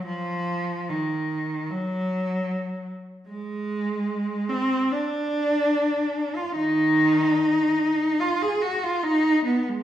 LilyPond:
\new Staff \with { instrumentName = "Cello" } { \time 4/4 \key ees \minor \tempo 4 = 73 << { f4 ees4 ges4. r8 | aes4. c'8 d'4.~ d'16 f'16 | ees'2 f'16 aes'16 ges'16 f'16 ees'8 ces'16 aes16 | } \\ { r1 | r1 | ees4. r2 r8 | } >> }